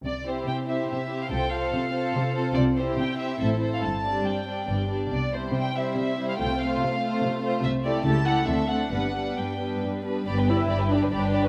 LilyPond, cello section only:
\new Staff \with { instrumentName = "Cello section" } { \clef bass \time 3/4 \key c \major \tempo 4 = 142 c4 c4 c4 | c4 c4 c4 | c4 c4 a,4 | g,4 g,4 g,4 |
c4 c4 c4 | c4 c4 c4 | \key g \major c4 cis4 d4 | g,4 g,4 g,4 |
g,4 g,4 g,4 | }